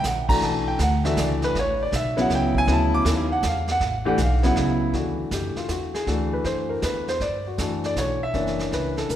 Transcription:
0.03 A#1 F#5, snare, hi-hat pedal
0.28 E3 A3 D4 F#4 A#5, kick, crash
0.41 B1 A5, brush sweep, kick, snare
0.68 G5
0.79 D2 F#5, kick, snare, hi-hat pedal
1.04 E3 A3 D4 F#4 E5, snare
1.17 C#2 D5, kick, snare, hi-hat pedal
1.42 B4, snare
1.55 A1, brush sweep, kick, snare
1.59 C#5
1.83 D5
1.92 B1 E5, kick, snare, hi-hat pedal
2.17 C#3 F#3 B3 E4, snare
2.21 F#5
2.30 C#2, kick, snare
2.35 G5
2.55 G#5, kick
2.67 D2 C#3 F#3 B3 E4, brush sweep, kick, snare
2.73 A5
2.94 D6
3.05 D#2, kick, snare, hi-hat pedal
3.28 F5
3.32 F#5
3.43 E2, kick, snare, hi-hat pedal
3.47 F5
3.68 F#5, snare
3.80 A1, brush sweep, kick, snare
4.05 E3 A3 D4 G4 F#5
4.18 B1, kick, snare, hi-hat pedal
4.23 F5
4.43 C#3 F#3 B3 E4 F#5, snare
4.56 C#2, kick, snare
4.93 D2 E3 A3 D4 F#4, brush sweep, kick, snare
5.31 F#2 G4, kick, snare, hi-hat pedal
5.56 F4, muted upright bass stroke, snare
5.68 E2 F#4, kick, snare, hi-hat pedal
5.94 G#4, snare
6.07 D2 E3 A3 D4 F#4 A4, brush sweep, kick, snare
6.33 B4
6.44 F#2 C5, kick, snare
6.70 A#4
6.82 E2 B4, kick, snare, hi-hat pedal
7.08 C5, snare
7.20 G2 D5, brush sweep, kick, snare
7.47 F#4
7.58 F#2 E3 A3 D4 F#4 A4, kick, snare, hi-hat pedal
7.84 D5, snare
7.96 B1 C#5, kick, snare, hi-hat pedal
8.23 E5
8.34 F#1 E3 A#3 C#4 D4, brush sweep, kick, snare
8.47 snare
8.59 snare
8.71 C#2 B4, kick, snare
8.97 A4, snare
9.09 A#1 A#4, hi-hat pedal

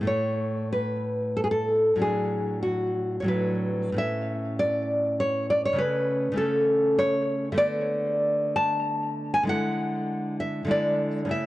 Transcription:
0.01 A2 A3
0.05 E4 C#5
0.72 B4
1.37 A4
1.44 G#4
1.51 A4
1.96 A2 F#3 D4
2.02 G#4
2.63 F#4
3.20 A2 F#3 C#5
3.26 D4 B4
3.92 A2 A3
3.96 C#4 E5
4.59 D5
5.20 C#5
5.50 D5
5.65 C#5
5.73 C#3 A3 C#4
5.78 B4
6.32 C#3 A3
6.36 C#4 A4
6.99 C#5
7.52 D3 A3 B3 E5
7.58 D5
8.56 A5
9.34 G#5
9.43 D3 G#3 E4
9.49 F#5
10.40 E5
10.65 D3 G#3 E4
10.71 D5
11.25 C#3 A3
11.29 E4 E5

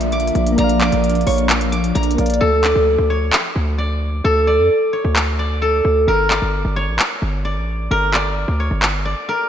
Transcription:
Already playing: A#1 F3 A#3 D4 F4 A#4 D5 E5 A#5 C#6
0.01 closed hi-hat
0.12 D6, closed hi-hat
0.20 closed hi-hat
0.27 closed hi-hat
0.35 A#1, closed hi-hat
0.47 closed hi-hat
0.52 A#3 A#4
0.58 A#1 D5 A#5, closed hi-hat
0.64 F5
0.69 closed hi-hat
0.81 D6, clap
0.92 A#1, closed hi-hat
1.04 closed hi-hat
1.10 closed hi-hat
1.15 closed hi-hat
1.21 closed hi-hat
1.27 A#1 C#5 C#6, open hi-hat
1.38 closed hi-hat
1.50 clap, closed hi-hat
1.61 closed hi-hat
1.72 D6, closed hi-hat
1.84 closed hi-hat
1.95 A#1 A#5, closed hi-hat
2.03 closed hi-hat
2.11 closed hi-hat
2.15 A#1 A#3 A#4 D5, closed hi-hat
2.21 F5
2.26 closed hi-hat
2.30 closed hi-hat
2.34 closed hi-hat
2.41 D2 A4
2.64 D5, clap
2.76 D2
2.98 D2
3.10 C#5
3.33 clap
3.56 D2
3.78 D5
4.24 D2 A4
4.47 D5
4.59 F2
4.93 C#5
5.05 D2
5.16 clap
5.39 D5
5.62 A4
5.85 D2
6.08 G1 A#4
6.30 D5, clap
6.42 G1
6.65 G1
6.76 C#5
6.88 A1
6.99 clap
7.22 G1
7.45 D5
7.56 A1
7.91 G1 A#4
8.14 D5, clap
8.48 D2
8.60 C#5
8.71 G1
8.82 clap
9.05 D5
9.29 A#4

